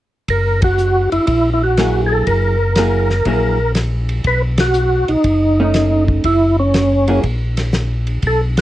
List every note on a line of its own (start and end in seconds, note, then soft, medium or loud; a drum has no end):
0.28 1.08 F#1 medium
0.28 0.61 A#4 medium
0.28 kick soft
0.28 ride medium
0.62 1.10 F#4 medium
0.62 kick medium
0.62 ride medium
0.78 hi-hat pedal medium
1.12 1.20 F#1 soft
1.12 1.26 E4 medium
1.12 ride soft
1.27 2.23 A#1 medium
1.27 1.50 E4 medium
1.27 kick soft
1.27 ride medium
1.54 1.62 E4 medium
1.64 2.01 F#4 medium
1.78 2.55 F#3 soft
1.78 2.55 A#3 soft
1.78 2.55 E4 soft
1.78 2.56 G#4 medium
1.78 snare medium
1.78 hi-hat pedal soft
1.78 ride medium
2.06 2.13 G#4 medium
2.12 2.26 A4 medium
2.27 3.22 F#1 medium
2.27 3.72 A#4 medium
2.27 kick soft
2.27 ride medium
2.76 3.08 F#3 medium
2.76 3.08 A#3 medium
2.76 3.08 E4 medium
2.76 3.08 G#4 medium
2.76 snare medium
2.76 hi-hat pedal soft
2.76 ride medium
3.10 snare soft
3.25 4.21 A#1 medium
3.25 3.57 F#3 medium
3.25 3.57 A#3 medium
3.25 3.57 E4 medium
3.25 3.58 G#4 medium
3.25 kick soft
3.25 ride soft
3.75 snare medium
3.75 hi-hat pedal medium
3.75 ride medium
4.09 ride soft
4.24 5.05 B1 medium
4.24 4.42 B4 medium
4.24 kick soft
4.24 ride soft
4.58 5.11 F#4 medium
4.58 snare medium
4.58 ride medium
4.74 hi-hat pedal medium
5.08 5.17 B1 soft
5.08 6.04 D#4 medium
5.08 ride soft
5.24 6.20 F#1 medium
5.24 kick soft
5.24 ride medium
5.60 6.22 A3 medium
5.60 6.22 C#4 medium
5.60 6.22 D#4 medium
5.74 snare medium
5.74 hi-hat pedal medium
5.74 ride medium
6.08 kick soft
6.24 7.20 F#1 medium
6.24 6.56 E4 medium
6.24 kick soft
6.24 ride medium
6.59 7.20 C#4 medium
6.74 snare medium
6.74 hi-hat pedal soft
6.74 ride medium
7.07 7.22 F#3 soft
7.07 7.23 A#3 medium
7.07 7.23 E4 medium
7.07 7.23 G#4 medium
7.07 ride soft
7.23 8.19 A#1 medium
7.23 kick soft
7.23 ride soft
7.57 snare soft
7.57 ride medium
7.73 snare medium
7.73 hi-hat pedal soft
8.07 ride soft
8.23 8.61 B1 medium
8.23 kick soft
8.23 ride medium
8.27 8.41 A4 medium
8.57 snare medium
8.57 ride medium